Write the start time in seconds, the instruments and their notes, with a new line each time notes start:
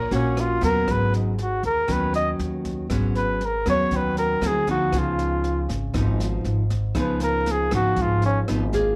Already playing: nylon-string guitar A#2, flugelhorn A#4, string section C#5 F#5 A#5 D#6
0.11 upright bass A#1, nylon-string guitar A#3 C#4 F#4, flugelhorn C#4, snare
0.37 flugelhorn F4, cross-stick, snare
0.61 upright bass D#2, nylon-string guitar F#3 B3 C#4, flugelhorn A#4, kick, snare
0.87 upright bass G#1, nylon-string guitar G#2, kick, cross-stick, snare
0.92 flugelhorn B4
1.14 flugelhorn D#4, snare
1.38 flugelhorn F#4, snare
1.63 upright bass D#2, flugelhorn A#4, kick, snare
1.87 upright bass D#2, nylon-string guitar D#3 F#3 B3 C#4, kick, cross-stick, snare
1.92 flugelhorn B4
2.14 flugelhorn D#5, snare
2.39 upright bass D#2, snare
2.65 kick, snare
2.90 upright bass G#1, nylon-string guitar G#2 F#3 B3 C#4, kick, cross-stick, snare
3.15 flugelhorn B4, snare
3.41 snare
3.45 flugelhorn A#4
3.66 upright bass D#2, nylon-string guitar F#3 B3 C#4, kick, cross-stick, snare
3.70 flugelhorn C#5
3.91 upright bass D#2, nylon-string guitar D#3, kick, snare
3.96 flugelhorn B4
4.17 flugelhorn A#4, snare
4.41 upright bass D2, nylon-string guitar F#3 C4 E4, cross-stick, snare
4.47 flugelhorn G#4
4.67 nylon-string guitar F3 B3 D#4, flugelhorn F#4, kick, snare
4.92 upright bass C#2, nylon-string guitar C#3, kick, cross-stick, snare
4.98 flugelhorn F4
5.19 snare
5.44 snare
5.69 upright bass G#1, kick, snare
5.94 upright bass G#1, nylon-string guitar G#2 F3 B3 D#4, kick, cross-stick, snare
6.20 snare
6.44 upright bass G#1, snare
6.70 kick, snare
6.95 upright bass C#2, nylon-string guitar C#3 F3 B3 D#4, kick, cross-stick, snare
7.00 flugelhorn B4
7.20 flugelhorn A#4, snare
7.46 snare
7.51 flugelhorn G#4
7.71 upright bass G#1, nylon-string guitar F3 B3 D#4, flugelhorn F#4, kick, cross-stick, snare
7.96 upright bass G#1, nylon-string guitar G#2, kick, snare
8.02 flugelhorn F4
8.22 flugelhorn C#4, snare
8.48 upright bass G#1, nylon-string guitar F3 B3 D#4, cross-stick, snare
8.73 nylon-string guitar A#3 F4 G#4, kick, snare